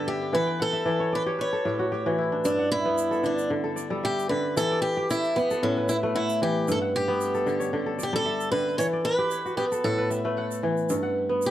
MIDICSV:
0, 0, Header, 1, 4, 480
1, 0, Start_track
1, 0, Tempo, 528169
1, 303, Time_signature, 4, 2, 24, 8
1, 10458, End_track
2, 0, Start_track
2, 0, Title_t, "Kora"
2, 0, Program_c, 0, 46
2, 0, Note_on_c, 0, 43, 78
2, 0, Note_on_c, 0, 50, 70
2, 0, Note_on_c, 0, 59, 70
2, 0, Note_on_c, 0, 67, 67
2, 0, Note_on_c, 0, 71, 67
2, 67, Note_on_c, 0, 76, 58
2, 298, Note_on_c, 0, 52, 77
2, 302, Note_on_c, 0, 78, 57
2, 348, Note_off_c, 0, 43, 0
2, 348, Note_off_c, 0, 50, 0
2, 357, Note_off_c, 0, 67, 0
2, 425, Note_on_c, 0, 79, 67
2, 539, Note_off_c, 0, 78, 0
2, 542, Note_on_c, 0, 78, 71
2, 584, Note_off_c, 0, 71, 0
2, 659, Note_off_c, 0, 76, 0
2, 663, Note_on_c, 0, 76, 69
2, 766, Note_off_c, 0, 52, 0
2, 776, Note_on_c, 0, 74, 59
2, 777, Note_on_c, 0, 52, 69
2, 908, Note_on_c, 0, 73, 68
2, 916, Note_off_c, 0, 59, 0
2, 1021, Note_off_c, 0, 74, 0
2, 1024, Note_on_c, 0, 74, 60
2, 1148, Note_off_c, 0, 73, 0
2, 1149, Note_on_c, 0, 67, 82
2, 1151, Note_on_c, 0, 73, 68
2, 1203, Note_off_c, 0, 78, 0
2, 1260, Note_on_c, 0, 71, 61
2, 1271, Note_off_c, 0, 79, 0
2, 1311, Note_off_c, 0, 52, 0
2, 1388, Note_on_c, 0, 69, 67
2, 1499, Note_off_c, 0, 67, 0
2, 1502, Note_on_c, 0, 45, 66
2, 1502, Note_on_c, 0, 67, 57
2, 1602, Note_off_c, 0, 76, 0
2, 1629, Note_on_c, 0, 66, 63
2, 1739, Note_off_c, 0, 67, 0
2, 1743, Note_on_c, 0, 67, 68
2, 1870, Note_off_c, 0, 66, 0
2, 1873, Note_on_c, 0, 52, 69
2, 1874, Note_on_c, 0, 66, 61
2, 1984, Note_on_c, 0, 64, 57
2, 2031, Note_off_c, 0, 74, 0
2, 2110, Note_on_c, 0, 62, 65
2, 2164, Note_off_c, 0, 73, 0
2, 2225, Note_on_c, 0, 43, 77
2, 2273, Note_off_c, 0, 45, 0
2, 2273, Note_off_c, 0, 52, 0
2, 2279, Note_off_c, 0, 66, 0
2, 2351, Note_on_c, 0, 78, 64
2, 2378, Note_off_c, 0, 71, 0
2, 2406, Note_off_c, 0, 67, 0
2, 2585, Note_off_c, 0, 69, 0
2, 2593, Note_on_c, 0, 59, 75
2, 2826, Note_on_c, 0, 69, 64
2, 2939, Note_on_c, 0, 50, 71
2, 3173, Note_off_c, 0, 50, 0
2, 3184, Note_on_c, 0, 50, 81
2, 3228, Note_off_c, 0, 78, 0
2, 3302, Note_off_c, 0, 69, 0
2, 3305, Note_on_c, 0, 69, 65
2, 3408, Note_off_c, 0, 64, 0
2, 3416, Note_on_c, 0, 74, 61
2, 3543, Note_off_c, 0, 69, 0
2, 3547, Note_on_c, 0, 69, 57
2, 3548, Note_on_c, 0, 55, 80
2, 3636, Note_off_c, 0, 62, 0
2, 3666, Note_on_c, 0, 76, 73
2, 3900, Note_off_c, 0, 50, 0
2, 3911, Note_on_c, 0, 50, 88
2, 3956, Note_off_c, 0, 55, 0
2, 4148, Note_on_c, 0, 52, 71
2, 4196, Note_off_c, 0, 43, 0
2, 4196, Note_off_c, 0, 50, 0
2, 4279, Note_off_c, 0, 74, 0
2, 4283, Note_on_c, 0, 74, 68
2, 4287, Note_off_c, 0, 59, 0
2, 4517, Note_on_c, 0, 67, 79
2, 4605, Note_off_c, 0, 76, 0
2, 4744, Note_off_c, 0, 69, 0
2, 4875, Note_on_c, 0, 59, 74
2, 5005, Note_on_c, 0, 69, 72
2, 5114, Note_on_c, 0, 45, 91
2, 5157, Note_off_c, 0, 52, 0
2, 5246, Note_on_c, 0, 71, 65
2, 5290, Note_off_c, 0, 74, 0
2, 5349, Note_on_c, 0, 76, 70
2, 5476, Note_off_c, 0, 71, 0
2, 5479, Note_on_c, 0, 71, 67
2, 5482, Note_on_c, 0, 57, 81
2, 5590, Note_on_c, 0, 78, 68
2, 5645, Note_off_c, 0, 67, 0
2, 5833, Note_on_c, 0, 52, 79
2, 6072, Note_on_c, 0, 43, 84
2, 6117, Note_off_c, 0, 45, 0
2, 6117, Note_off_c, 0, 52, 0
2, 6126, Note_off_c, 0, 78, 0
2, 6194, Note_on_c, 0, 78, 67
2, 6203, Note_off_c, 0, 69, 0
2, 6289, Note_off_c, 0, 76, 0
2, 6431, Note_off_c, 0, 59, 0
2, 6434, Note_on_c, 0, 59, 86
2, 6596, Note_off_c, 0, 71, 0
2, 6675, Note_on_c, 0, 69, 68
2, 6782, Note_on_c, 0, 50, 70
2, 6905, Note_on_c, 0, 73, 70
2, 7015, Note_off_c, 0, 50, 0
2, 7026, Note_on_c, 0, 50, 79
2, 7071, Note_off_c, 0, 78, 0
2, 7142, Note_off_c, 0, 69, 0
2, 7146, Note_on_c, 0, 69, 66
2, 7257, Note_on_c, 0, 74, 61
2, 7297, Note_off_c, 0, 57, 0
2, 7311, Note_off_c, 0, 73, 0
2, 7385, Note_off_c, 0, 69, 0
2, 7389, Note_on_c, 0, 55, 80
2, 7389, Note_on_c, 0, 69, 64
2, 7502, Note_on_c, 0, 76, 72
2, 7735, Note_off_c, 0, 50, 0
2, 7746, Note_on_c, 0, 50, 80
2, 7795, Note_off_c, 0, 55, 0
2, 7984, Note_on_c, 0, 52, 69
2, 8035, Note_off_c, 0, 43, 0
2, 8035, Note_off_c, 0, 50, 0
2, 8113, Note_off_c, 0, 74, 0
2, 8117, Note_on_c, 0, 74, 62
2, 8128, Note_off_c, 0, 59, 0
2, 8347, Note_on_c, 0, 67, 83
2, 8442, Note_off_c, 0, 76, 0
2, 8586, Note_off_c, 0, 69, 0
2, 8594, Note_on_c, 0, 66, 59
2, 8648, Note_off_c, 0, 67, 0
2, 8699, Note_on_c, 0, 59, 77
2, 8831, Note_on_c, 0, 69, 66
2, 8947, Note_on_c, 0, 45, 77
2, 8992, Note_off_c, 0, 52, 0
2, 9069, Note_on_c, 0, 71, 67
2, 9124, Note_off_c, 0, 74, 0
2, 9182, Note_on_c, 0, 76, 66
2, 9312, Note_off_c, 0, 71, 0
2, 9312, Note_on_c, 0, 57, 80
2, 9315, Note_on_c, 0, 71, 64
2, 9431, Note_on_c, 0, 78, 67
2, 9663, Note_on_c, 0, 52, 75
2, 9906, Note_on_c, 0, 43, 80
2, 9949, Note_off_c, 0, 45, 0
2, 9949, Note_off_c, 0, 52, 0
2, 9961, Note_off_c, 0, 66, 0
2, 9961, Note_off_c, 0, 78, 0
2, 10022, Note_on_c, 0, 78, 63
2, 10029, Note_off_c, 0, 69, 0
2, 10121, Note_off_c, 0, 76, 0
2, 10260, Note_off_c, 0, 59, 0
2, 10264, Note_on_c, 0, 59, 75
2, 10433, Note_off_c, 0, 71, 0
2, 10458, Note_off_c, 0, 43, 0
2, 10458, Note_off_c, 0, 57, 0
2, 10458, Note_off_c, 0, 59, 0
2, 10458, Note_off_c, 0, 78, 0
2, 10458, End_track
3, 0, Start_track
3, 0, Title_t, "Steel-string acoustic guitar"
3, 0, Program_c, 1, 25
3, 70, Note_on_c, 1, 67, 74
3, 314, Note_off_c, 1, 67, 0
3, 314, Note_on_c, 1, 71, 86
3, 556, Note_off_c, 1, 71, 0
3, 563, Note_on_c, 1, 69, 88
3, 1043, Note_off_c, 1, 69, 0
3, 1047, Note_on_c, 1, 71, 75
3, 1109, Note_off_c, 1, 71, 0
3, 1281, Note_on_c, 1, 73, 79
3, 1958, Note_off_c, 1, 73, 0
3, 2228, Note_on_c, 1, 62, 82
3, 2464, Note_off_c, 1, 62, 0
3, 2468, Note_on_c, 1, 64, 108
3, 2956, Note_off_c, 1, 64, 0
3, 2960, Note_on_c, 1, 62, 71
3, 3178, Note_off_c, 1, 62, 0
3, 3678, Note_on_c, 1, 67, 98
3, 3898, Note_off_c, 1, 67, 0
3, 3902, Note_on_c, 1, 71, 83
3, 4153, Note_off_c, 1, 71, 0
3, 4156, Note_on_c, 1, 69, 105
3, 4374, Note_off_c, 1, 69, 0
3, 4378, Note_on_c, 1, 67, 92
3, 4632, Note_off_c, 1, 67, 0
3, 4640, Note_on_c, 1, 64, 94
3, 4871, Note_on_c, 1, 59, 82
3, 4883, Note_off_c, 1, 64, 0
3, 5094, Note_off_c, 1, 59, 0
3, 5119, Note_on_c, 1, 61, 80
3, 5353, Note_on_c, 1, 64, 86
3, 5362, Note_off_c, 1, 61, 0
3, 5417, Note_off_c, 1, 64, 0
3, 5594, Note_on_c, 1, 64, 90
3, 5816, Note_off_c, 1, 64, 0
3, 5842, Note_on_c, 1, 67, 85
3, 6060, Note_off_c, 1, 67, 0
3, 6103, Note_on_c, 1, 69, 88
3, 6164, Note_off_c, 1, 69, 0
3, 6322, Note_on_c, 1, 67, 93
3, 7000, Note_off_c, 1, 67, 0
3, 7300, Note_on_c, 1, 67, 80
3, 7409, Note_off_c, 1, 67, 0
3, 7413, Note_on_c, 1, 69, 92
3, 7735, Note_off_c, 1, 69, 0
3, 7739, Note_on_c, 1, 71, 85
3, 7967, Note_off_c, 1, 71, 0
3, 7980, Note_on_c, 1, 73, 98
3, 8046, Note_off_c, 1, 73, 0
3, 8223, Note_on_c, 1, 71, 102
3, 8695, Note_off_c, 1, 71, 0
3, 8699, Note_on_c, 1, 67, 77
3, 8765, Note_off_c, 1, 67, 0
3, 8944, Note_on_c, 1, 69, 72
3, 9168, Note_off_c, 1, 69, 0
3, 10418, Note_on_c, 1, 67, 82
3, 10458, Note_off_c, 1, 67, 0
3, 10458, End_track
4, 0, Start_track
4, 0, Title_t, "Drums"
4, 2223, Note_on_c, 9, 82, 72
4, 2314, Note_off_c, 9, 82, 0
4, 2707, Note_on_c, 9, 82, 69
4, 2798, Note_off_c, 9, 82, 0
4, 2838, Note_on_c, 9, 82, 18
4, 2929, Note_off_c, 9, 82, 0
4, 2942, Note_on_c, 9, 82, 20
4, 3033, Note_off_c, 9, 82, 0
4, 3076, Note_on_c, 9, 82, 56
4, 3167, Note_off_c, 9, 82, 0
4, 3428, Note_on_c, 9, 82, 65
4, 3518, Note_off_c, 9, 82, 0
4, 3810, Note_on_c, 9, 82, 53
4, 3901, Note_off_c, 9, 82, 0
4, 4155, Note_on_c, 9, 82, 71
4, 4246, Note_off_c, 9, 82, 0
4, 4637, Note_on_c, 9, 82, 63
4, 4727, Note_off_c, 9, 82, 0
4, 4762, Note_on_c, 9, 82, 21
4, 4853, Note_off_c, 9, 82, 0
4, 4880, Note_on_c, 9, 82, 21
4, 4971, Note_off_c, 9, 82, 0
4, 5003, Note_on_c, 9, 82, 49
4, 5094, Note_off_c, 9, 82, 0
4, 5351, Note_on_c, 9, 82, 67
4, 5442, Note_off_c, 9, 82, 0
4, 5719, Note_on_c, 9, 82, 58
4, 5810, Note_off_c, 9, 82, 0
4, 6072, Note_on_c, 9, 82, 72
4, 6163, Note_off_c, 9, 82, 0
4, 6550, Note_on_c, 9, 82, 62
4, 6641, Note_off_c, 9, 82, 0
4, 6674, Note_on_c, 9, 82, 20
4, 6765, Note_off_c, 9, 82, 0
4, 6788, Note_on_c, 9, 82, 20
4, 6879, Note_off_c, 9, 82, 0
4, 6914, Note_on_c, 9, 82, 50
4, 7005, Note_off_c, 9, 82, 0
4, 7265, Note_on_c, 9, 82, 71
4, 7356, Note_off_c, 9, 82, 0
4, 7639, Note_on_c, 9, 82, 52
4, 7730, Note_off_c, 9, 82, 0
4, 7995, Note_on_c, 9, 82, 67
4, 8086, Note_off_c, 9, 82, 0
4, 8461, Note_on_c, 9, 82, 62
4, 8552, Note_off_c, 9, 82, 0
4, 8597, Note_on_c, 9, 82, 21
4, 8688, Note_off_c, 9, 82, 0
4, 8707, Note_on_c, 9, 82, 19
4, 8798, Note_off_c, 9, 82, 0
4, 8835, Note_on_c, 9, 82, 51
4, 8925, Note_off_c, 9, 82, 0
4, 8945, Note_on_c, 9, 82, 21
4, 9036, Note_off_c, 9, 82, 0
4, 9188, Note_on_c, 9, 82, 60
4, 9279, Note_off_c, 9, 82, 0
4, 9554, Note_on_c, 9, 82, 61
4, 9645, Note_off_c, 9, 82, 0
4, 9789, Note_on_c, 9, 82, 20
4, 9880, Note_off_c, 9, 82, 0
4, 9900, Note_on_c, 9, 82, 75
4, 9991, Note_off_c, 9, 82, 0
4, 10378, Note_on_c, 9, 82, 67
4, 10458, Note_off_c, 9, 82, 0
4, 10458, End_track
0, 0, End_of_file